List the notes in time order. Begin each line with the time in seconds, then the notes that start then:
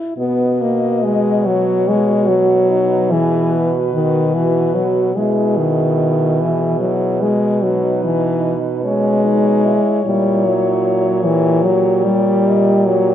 Already playing: E4
0.18 B2 B3 F#4 D#5
0.61 A#3
1.04 G#3
1.43 F#3 C#5
1.88 G#3
2.28 F#3
2.68 D#4 B4
3.11 E3 G#4
3.53 F#4
3.94 D#3 F#4
4.34 E3
4.75 F#3
5.14 B2 G#3 E4 G#4
5.57 D#3
6.38 E3 G#4
6.80 F#3
7.22 G#3
7.62 F#3 D#4 B4
8.04 E3
8.84 G#3 C#4 C#5
9.25 D#4
9.65 E4
10.05 A#2 G3 E4
10.45 F#3
11.23 E3 G4
11.64 F#3
12.04 G3
12.46 D#5
12.86 F#3 C#5